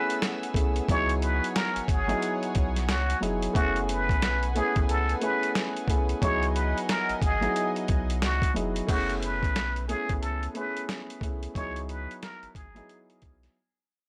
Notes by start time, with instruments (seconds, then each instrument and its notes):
Already playing: grand piano A3 B3 C#4 E4 G#4, muted trumpet B4, string section B4 F#5 G#5 E6
0.10 closed hi-hat
0.22 snare, closed hi-hat
0.43 closed hi-hat
0.54 sub bass C2, grand piano A3 B3 C#4 E4 G#4, kick, closed hi-hat
0.76 closed hi-hat
0.88 sub bass C#2, grand piano F#3 B3 D#4 E4 G#4, string section C#5 F#5 G#5, muted trumpet C#5, kick, closed hi-hat
1.09 closed hi-hat
1.22 muted trumpet B4, closed hi-hat
1.44 closed hi-hat
1.55 muted trumpet A#4, snare, closed hi-hat
1.76 sub bass G#1, closed hi-hat
1.88 sub bass G#1, muted trumpet G#4, kick, closed hi-hat
2.07 grand piano F#3 B3 D#4 E4 G#4, closed hi-hat
2.22 closed hi-hat
2.43 closed hi-hat
2.55 sub bass B1, kick, closed hi-hat
2.76 snare, closed hi-hat
2.89 sub bass C#2, muted trumpet F#4, snare, closed hi-hat
3.10 closed hi-hat
3.20 sub bass F1, grand piano F#3 B3 D#4 E4 G#4, closed hi-hat
3.42 closed hi-hat
3.54 sub bass F#1, grand piano A3 B3 C#4 E4 G#4, muted trumpet F#4, string section B4 F#5 G#5, kick, closed hi-hat
3.76 closed hi-hat
3.89 muted trumpet B4, closed hi-hat
4.09 sub bass B1, kick, closed hi-hat
4.22 snare, closed hi-hat
4.43 closed hi-hat
4.55 grand piano A3 B3 C#4 E4 G#4, muted trumpet G#4, closed hi-hat
4.76 sub bass A1, kick, closed hi-hat
4.88 sub bass C#2, muted trumpet A4, closed hi-hat
5.09 closed hi-hat
5.21 grand piano A3 B3 C#4 E4 G#4, muted trumpet B4, closed hi-hat
5.43 closed hi-hat
5.55 snare, closed hi-hat
5.77 closed hi-hat
5.87 sub bass C2, grand piano A3 B3 C#4 E4 G#4, kick, closed hi-hat
6.09 closed hi-hat
6.21 sub bass C#2, grand piano F#3 B3 D#4 E4 G#4, muted trumpet C#5, string section D#5 F#5 G#5, kick, closed hi-hat
6.43 closed hi-hat
6.54 muted trumpet B4, closed hi-hat
6.78 closed hi-hat
6.88 muted trumpet A#4, snare, closed hi-hat
7.09 sub bass G#1, closed hi-hat
7.22 sub bass G#1, muted trumpet G#4, kick, closed hi-hat
7.41 grand piano F#3 B3 D#4 E4 G#4, closed hi-hat
7.56 closed hi-hat
7.76 closed hi-hat
7.88 sub bass B1, kick, closed hi-hat
8.10 closed hi-hat
8.22 sub bass C#2, muted trumpet F#4, snare, closed hi-hat
8.42 kick, closed hi-hat
8.54 sub bass F1, grand piano F#3 B3 D#4 E4 G#4, closed hi-hat
8.76 closed hi-hat
8.87 sub bass F#1, grand piano A3 B3 C#4 E4 G#4, muted trumpet F#4, kick, closed hi-hat, crash
9.09 closed hi-hat
9.22 muted trumpet B4, closed hi-hat
9.43 sub bass B1, kick, closed hi-hat
9.56 snare, closed hi-hat
9.76 closed hi-hat
9.87 grand piano A3 B3 C#4 E4 G#4, muted trumpet G#4, closed hi-hat
10.09 sub bass A1, kick, closed hi-hat
10.20 sub bass C#2, muted trumpet A4, closed hi-hat
10.43 closed hi-hat
10.54 grand piano A3 B3 C#4 E4 G#4, muted trumpet B4, closed hi-hat
10.77 closed hi-hat
10.89 snare, closed hi-hat
11.10 closed hi-hat
11.21 sub bass C2, grand piano A3 B3 C#4 E4 G#4, kick, closed hi-hat
11.43 closed hi-hat
11.55 sub bass C#2, grand piano F#3 B3 D#4 E4 G#4, muted trumpet C#5, kick, closed hi-hat
11.76 closed hi-hat
11.89 muted trumpet B4, closed hi-hat
12.11 closed hi-hat
12.22 muted trumpet A#4, snare, closed hi-hat
12.43 sub bass G#1, closed hi-hat
12.55 sub bass G#1, muted trumpet G#4, kick, closed hi-hat
12.74 grand piano F#3 B3 D#4 E4 G#4, closed hi-hat
12.89 closed hi-hat
13.10 closed hi-hat
13.22 sub bass B1, kick, closed hi-hat
13.43 snare, closed hi-hat